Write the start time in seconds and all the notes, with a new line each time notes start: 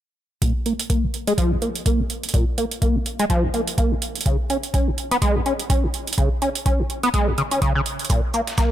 0.42 A#2, kick, closed hi-hat
0.66 A#3, closed hi-hat
0.79 closed hi-hat
0.90 A#3, kick, closed hi-hat
1.03 A#1
1.14 closed hi-hat
1.27 G#3, closed hi-hat
1.38 F3, kick, closed hi-hat
1.51 A#1
1.62 A#3, closed hi-hat
1.75 closed hi-hat
1.86 A#3, kick, closed hi-hat
1.99 A#1
2.10 closed hi-hat
2.23 closed hi-hat
2.29 closed hi-hat
2.34 A#2, kick, closed hi-hat
2.58 A#3, closed hi-hat
2.71 closed hi-hat
2.82 A#3, kick, closed hi-hat
2.95 A#1
3.06 closed hi-hat
3.19 G#3, closed hi-hat
3.30 F3, kick, closed hi-hat
3.43 A#1
3.54 A#3, closed hi-hat
3.67 closed hi-hat
3.78 A#3, kick, closed hi-hat
3.91 A#1
4.02 closed hi-hat
4.15 closed hi-hat
4.21 closed hi-hat
4.26 C#3, kick
4.50 C#4, closed hi-hat
4.63 closed hi-hat
4.74 C#4, kick, closed hi-hat
4.87 C#2
4.98 closed hi-hat
5.11 B3, closed hi-hat
5.22 G#3, kick, closed hi-hat
5.35 C#2
5.46 C#4, closed hi-hat
5.59 closed hi-hat
5.70 C#4, kick, closed hi-hat
5.83 C#2
5.94 closed hi-hat
6.07 closed hi-hat
6.13 closed hi-hat
6.18 C#3, kick, closed hi-hat
6.42 C#4, closed hi-hat
6.55 closed hi-hat
6.66 C#4, kick, closed hi-hat
6.79 C#2
6.90 closed hi-hat
7.03 B3, closed hi-hat
7.14 G#3, kick, closed hi-hat
7.27 C#2
7.38 C#3, closed hi-hat
7.51 C#4, closed hi-hat
7.62 C#3, kick, closed hi-hat
7.75 C#3
7.86 closed hi-hat
7.99 closed hi-hat
8.05 closed hi-hat
8.10 A#2, kick, closed hi-hat, shaker
8.34 A#3, closed hi-hat, shaker
8.47 snare, closed hi-hat
8.58 A#3, kick, snare, closed hi-hat, shaker